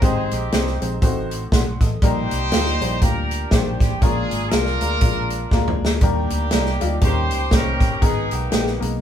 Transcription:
0.01 G#1 G#2 G#3 C4 D#4 G4 G#4 C5, kick, closed hi-hat
0.31 A#1 C4 D#4 G4, closed hi-hat
0.52 C2 G#3 C4 D#4 G4 C5, snare, closed hi-hat
0.67 snare
0.81 A#1 G#3 C4 D#4 G4 C5, closed hi-hat
1.02 A1 A2 A3 C4 D#4 F#4 C5, kick, closed hi-hat
1.31 closed hi-hat
1.52 B1 F#5 C6, kick, snare, closed hi-hat
1.81 A1 A4 D#5, kick, snare, closed hi-hat
2.02 A#1 A#2 G3 A#3 D#4 G4 A#4 C5 D5, kick, closed hi-hat
2.31 C2, closed hi-hat
2.52 D2 G3 A#3 D4 D#4 F4, snare, closed hi-hat
2.66 snare
2.81 A#1 G3 A#3 D4 D#4 C5, closed hi-hat
3.01 D2 G3 A#3 D4 F4 G4 A#4, kick, closed hi-hat
3.31 closed hi-hat
3.51 A#1 D#3 G3 A#3 D4 C5, kick, snare, closed hi-hat
3.80 A1 G4, kick, snare, closed hi-hat
4.00 A#1 A#2 G#3 A#3 C#4 D4 F4 G#4 A#4, kick, closed hi-hat
4.08 D4
4.31 G#1, closed hi-hat
4.50 C2 G#3 A#3 D4 F4 G#4 A#4, snare, closed hi-hat
4.66 snare
4.81 D2 G#3 A#3 D4 F4 A#4, closed hi-hat
5.01 A#1 G#3 A#3 D4 F4 A#4, kick, closed hi-hat
5.30 closed hi-hat
5.51 D2 G#3 A#3 D4 F4 A#4, kick, snare
5.68 mid tom
5.81 D2, snare
6.01 D#2 D#3 G3 A#3 D4 G4 A#4, kick, closed hi-hat
6.30 D2, closed hi-hat
6.51 C2 G3 A#3 D4 D#4 A#4, snare, closed hi-hat
6.65 snare
6.80 D2 G3 A#3 D4 D#4 F4, closed hi-hat
7.01 D#2 D#3 G3 A#3 C#4 D#4 G4 G#4 C5, kick, closed hi-hat
7.08 A#4
7.31 C#2, closed hi-hat
7.51 C2 G3 A#3 C#4 D#4 G4 A#4 C5, kick, snare, closed hi-hat
7.80 G1, kick, snare, closed hi-hat
8.01 G#1 G#2 G#3 B3 D#4 G#4 A#4, kick, closed hi-hat
8.31 B1 A#3 B3 G4, closed hi-hat
8.50 A#1 G#3 A#3 B3 D#4 G4, snare, closed hi-hat
8.67 snare
8.80 B1 G#3 A#3 B3 D#4 A#4, closed hi-hat

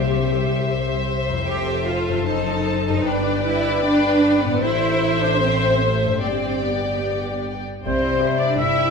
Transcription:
Already playing: C2 C3 G3 E4 G4 C5 E5
1.29 F2
1.33 E4
1.38 A4
1.42 F1 C5
1.47 G4 A4 C5
1.87 F4
2.09 F#2
2.13 C4
2.18 A4
2.22 C5
2.27 F#1 D#4 A5
2.87 G2 D#4
2.93 D4
2.97 G4
3.02 B4
3.06 G1 D4 B4 D5 G5
3.46 E4
3.85 D4
4.44 A2 B3
4.50 C4
4.54 E4
4.59 A4
4.63 A1 E4 A4 C5 E5
5.21 D4
5.41 C4
5.81 A3
6.04 G2
6.09 D4
6.13 G4
6.18 C4 D5
6.22 G1 G4 D5 G5
6.63 B3
7.85 C2 C3 G3 C4 G4 C5 E5
8.04 E4
8.22 G4 C5 E5
8.40 D4 G4 D5
8.58 G1 G3 E4 G4 E5
8.76 E4

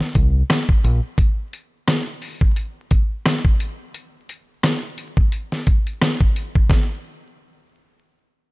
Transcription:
0.00 muted fingered electric bass stroke, snare
0.15 C2, kick, closed hi-hat
0.50 cross-stick, snare, closed hi-hat
0.69 kick
0.84 A#1, closed hi-hat
1.18 kick, closed hi-hat
1.53 closed hi-hat
1.88 cross-stick, snare, closed hi-hat
2.22 open hi-hat
2.41 kick
2.56 closed hi-hat
2.91 kick, closed hi-hat
3.26 cross-stick, snare, closed hi-hat
3.45 kick
3.60 closed hi-hat
3.94 closed hi-hat
4.29 closed hi-hat
4.63 cross-stick, snare, closed hi-hat
4.98 closed hi-hat
5.17 kick
5.32 closed hi-hat
5.52 snare
5.67 kick, closed hi-hat
5.87 closed hi-hat
6.01 cross-stick, snare, closed hi-hat
6.21 kick
6.36 closed hi-hat
6.55 kick
6.70 kick, snare

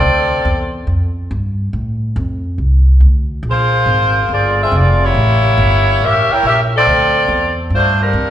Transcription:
Already playing: C4 F4 A4 D5
0.02 D2
0.45 E2
0.87 F2
1.31 G2
1.73 A2
2.16 F2
2.58 C2
3.00 D2
3.43 A#1
3.49 A#3 F4 G#4 C5
3.86 G#1
4.29 G1
4.33 A#3 F4 G#4 D5
4.62 C4 F4 G#4 E5
4.72 F1 D5
4.76 A#3 F4 G#4
5.04 A#3 E4 G4 C#5
5.14 A1
5.58 G1
6.01 A1 C#4 G4 A#4 E5
6.28 E4 A#4 C#5 G5, muted upright bass stroke
6.43 A#1
6.47 C#4 G4 A#4 E5
6.76 C4 F4 A4 D5
6.87 D2
7.28 E2
7.70 G2
7.74 A3 D4 F4 C5
8.02 G3 D4 F4 A#4
8.13 F2

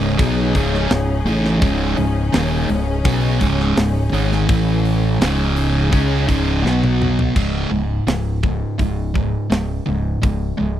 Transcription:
Already playing: C#1 C#2 G#2 C#3 C#4 D#4 G#4
0.18 B1 B2 F#3 B3, kick, open hi-hat
0.55 C#1 C#2 G#2 C#3, kick, open hi-hat
0.74 snare
0.90 C#1 C#2 G#2, snare, open hi-hat
1.25 A1 A2 E3 A3, open hi-hat
1.45 snare
1.62 C#1 C#2 G#2 C#3, kick, open hi-hat
1.97 C#1 C#2 G#2, open hi-hat
2.33 D#1 D#2 A#2 D#3, snare, open hi-hat
2.69 C#1 C#2 G#2, open hi-hat
3.04 B1 B2 F#3 B3, kick, open hi-hat
3.40 C#1 C#2 G#2 C#3, kick, open hi-hat
3.60 snare
3.77 C#1 C#2 G#2, snare, open hi-hat
4.13 G#1 G#2 D#3 G#3, open hi-hat
4.32 snare
4.48 A1 A2 E3 A3, kick, open hi-hat
4.85 open hi-hat
5.18 C#1 C#2 G#2 C#3 G#3 D#4, snare, open hi-hat
5.56 open hi-hat
5.91 C#2 C#3 G#3 C#4, kick, open hi-hat
6.26 C#1 C#2 G#2 C#3, kick, open hi-hat
6.62 B1 B2 F#3 B3 F#4
6.66 snare
6.83 high tom
7.02 mid tom
7.19 floor tom
7.36 C#1 C#2 G#2 C#3, kick, crash
7.71 C#1 C#2 G#2
8.07 C#1 C#2 G#2, snare, open hi-hat
8.43 C#2 G#2, kick
8.78 C#1 C#2 G#2, kick, open hi-hat
9.14 C#2 G#2, kick
9.50 C#1 C#2 G#2, snare, open hi-hat
9.86 C#1 C#2 G#2
10.22 C#1 C#2 G#2, kick, open hi-hat
10.57 C#1 C#2 G#2

